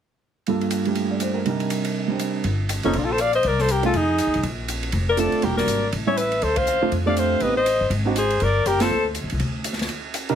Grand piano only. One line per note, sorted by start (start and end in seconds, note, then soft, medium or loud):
0.47 1.46 G2 soft
0.47 0.85 G3 soft
0.47 1.47 A#3 soft
0.47 1.47 F4 soft
0.47 1.47 A4 soft
0.86 1.45 G3 soft
0.86 1.47 A3 soft
0.86 1.46 D4 soft
0.86 1.47 G4 soft
1.11 1.27 D5 soft
1.22 1.40 C5 soft
1.34 1.48 A#4 soft
1.45 2.45 C3 soft
1.45 2.06 G3 soft
1.45 2.09 D4 soft
1.45 2.46 D#4 soft
1.50 2.47 A#4 medium
2.08 2.44 G3 soft
2.08 2.45 C4 soft
2.08 2.45 D4 soft
2.08 2.46 G4 soft
2.84 2.93 A#3 medium
2.84 2.93 C4 soft
2.84 2.94 F4 medium
2.84 2.94 A4 medium
3.83 3.93 A3 soft
3.83 3.92 C#4 soft
3.83 3.93 D#4 soft
3.83 3.93 G#4 soft
5.17 5.42 A3 medium
5.17 5.43 C4 medium
5.17 5.42 D4 medium
5.17 5.43 F4 medium
5.43 5.80 G3 soft
5.43 5.79 A#3 soft
5.43 5.80 D4 soft
5.43 5.79 F#4 medium
6.07 6.16 G3 medium
6.07 6.16 C#4 medium
6.07 6.16 E4 medium
6.07 6.16 G4 medium
6.82 6.91 A3 medium
6.82 6.91 C4 medium
6.82 6.91 D4 medium
6.82 6.91 F4 medium
7.06 7.39 A3 medium
7.06 7.39 C4 medium
7.06 7.40 D4 medium
7.06 7.40 G4 medium
7.42 7.55 B3 soft
7.42 7.55 C4 soft
7.42 7.55 D#4 soft
7.42 7.55 G4 medium
8.05 8.14 C4 medium
8.05 8.15 D4 medium
8.05 8.15 D#4 medium
8.05 8.15 F#4 medium
8.80 8.89 A#3 medium
8.80 8.90 C4 medium
8.80 8.90 F4 medium
8.80 8.90 A4 medium
10.29 10.35 C3 medium
10.29 10.35 D4 medium
10.29 10.35 D#4 medium
10.29 10.35 G4 medium
10.29 10.35 A#4 medium